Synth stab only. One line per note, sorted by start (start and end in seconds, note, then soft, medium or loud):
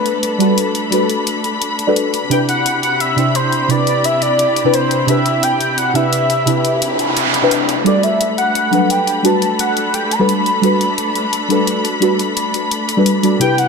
0.00 0.38 G3 medium
0.00 0.39 D4 medium
0.00 0.40 F#4 medium
0.00 0.41 A4 medium
0.00 0.42 B4 loud
0.38 0.89 G3 medium
0.38 0.90 D4 medium
0.38 0.90 F#4 medium
0.38 0.91 A4 medium
0.38 0.91 B4 medium
0.90 1.85 G3 medium
0.90 1.85 D4 medium
0.90 1.86 F#4 medium
0.90 1.86 A4 medium
0.90 1.86 B4 medium
1.87 1.93 G3 medium
1.87 1.93 D4 medium
1.87 1.94 F#4 medium
1.87 1.94 A4 medium
1.87 1.94 B4 loud
2.29 3.15 C3 medium
2.29 3.15 D4 medium
2.29 3.16 E4 medium
2.29 3.16 G4 medium
2.29 3.17 B4 loud
3.16 3.67 C3 medium
3.16 3.67 D4 medium
3.16 3.68 E4 medium
3.16 3.68 G4 medium
3.16 3.69 C5 medium
3.68 4.62 C3 medium
3.68 4.63 D4 medium
3.68 4.63 E4 medium
3.68 4.63 G4 medium
3.68 4.64 B4 medium
4.64 4.70 C3 loud
4.64 4.71 D4 medium
4.64 4.71 E4 medium
4.64 4.71 G4 medium
4.64 4.71 B4 loud
5.06 5.92 C3 medium
5.06 5.93 D4 medium
5.06 5.93 E4 medium
5.06 5.93 G4 medium
5.06 5.94 B4 loud
5.93 6.44 C3 medium
5.93 6.45 D4 medium
5.93 6.45 E4 medium
5.93 6.46 G4 medium
5.93 6.46 B4 medium
6.45 7.40 C3 medium
6.45 7.40 D4 medium
6.45 7.40 E4 medium
6.45 7.41 G4 medium
6.45 7.41 B4 medium
7.42 7.48 C3 loud
7.42 7.48 D4 medium
7.42 7.48 E4 medium
7.42 7.49 G4 medium
7.42 7.49 B4 loud
7.84 8.70 G3 medium
7.84 8.70 D4 medium
7.84 8.71 F#4 medium
7.84 8.71 A4 medium
7.84 8.72 B4 loud
8.71 9.23 F#3 medium
8.71 9.21 G3 medium
8.71 9.22 D4 medium
8.71 9.23 A4 medium
8.71 9.24 B4 medium
9.23 10.17 G3 medium
9.23 10.17 D4 medium
9.23 10.18 F#4 medium
9.23 10.18 A4 medium
9.23 10.19 B4 medium
10.19 10.25 G3 medium
10.19 10.26 D4 medium
10.19 10.26 F#4 medium
10.19 10.26 A4 medium
10.19 10.26 B4 loud
10.61 11.47 G3 medium
10.61 11.48 D4 medium
10.61 11.48 F#4 medium
10.61 11.48 A4 medium
10.61 11.49 B4 loud
11.48 11.99 G3 medium
11.48 12.00 D4 medium
11.48 12.00 F#4 medium
11.48 12.01 A4 medium
11.48 12.01 B4 medium
12.00 12.94 G3 medium
12.00 12.95 D4 medium
12.00 12.95 F#4 medium
12.00 12.96 A4 medium
12.00 12.96 B4 medium
12.97 13.21 G3 loud
12.97 13.21 D4 medium
12.97 13.21 F#4 medium
12.97 13.22 A4 medium
12.97 13.22 B4 loud
13.23 13.38 G3 medium
13.23 13.39 D4 medium
13.23 13.39 F#4 medium
13.23 13.39 A4 medium
13.23 13.39 D5 medium
13.39 13.68 C3 medium
13.39 13.68 D4 medium
13.39 13.68 E4 medium
13.39 13.68 G4 medium
13.39 13.68 B4 loud